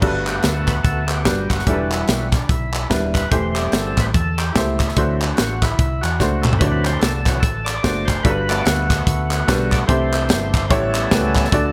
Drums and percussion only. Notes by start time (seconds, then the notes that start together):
0.02 kick, crash
0.27 clap, closed hi-hat
0.43 snare, closed hi-hat
0.68 kick, clap, closed hi-hat
0.85 kick, closed hi-hat
1.09 clap, closed hi-hat
1.25 kick, snare, closed hi-hat
1.50 kick, clap, closed hi-hat
1.59 snare
1.67 kick, closed hi-hat
1.92 clap, closed hi-hat
2.08 snare, closed hi-hat
2.32 kick, snare, clap, closed hi-hat
2.49 kick, closed hi-hat
2.74 clap, closed hi-hat
2.91 kick, snare, closed hi-hat
3.15 kick, clap, closed hi-hat
3.32 kick, closed hi-hat
3.56 clap, closed hi-hat
3.72 snare, closed hi-hat
3.97 kick, snare, clap, closed hi-hat
4.14 kick, closed hi-hat
4.39 clap, closed hi-hat
4.56 kick, snare, closed hi-hat
4.80 kick, clap, closed hi-hat
4.89 snare
4.96 kick, closed hi-hat
5.21 clap, closed hi-hat
5.37 snare, closed hi-hat
5.62 kick, snare, clap, closed hi-hat
5.79 kick, closed hi-hat
6.04 clap, closed hi-hat
6.20 kick, snare
6.44 clap, mid tom
6.53 floor tom
6.61 kick, closed hi-hat
6.85 clap, closed hi-hat
7.02 snare, closed hi-hat
7.26 kick, snare, clap, closed hi-hat
7.43 kick, closed hi-hat
7.67 clap, closed hi-hat
7.84 kick, snare, closed hi-hat
8.08 kick, clap, closed hi-hat
8.25 kick, closed hi-hat
8.50 clap, closed hi-hat
8.66 snare, closed hi-hat
8.90 kick, snare, clap, closed hi-hat
9.07 kick, closed hi-hat
9.31 clap, closed hi-hat
9.48 kick, snare, closed hi-hat
9.72 kick, clap, closed hi-hat
9.89 kick, closed hi-hat
10.13 clap, closed hi-hat
10.29 snare, closed hi-hat
10.54 kick, clap, closed hi-hat
10.71 kick, closed hi-hat
10.95 clap, closed hi-hat
11.11 kick, snare, closed hi-hat
11.35 kick, clap, closed hi-hat
11.45 snare
11.52 kick, closed hi-hat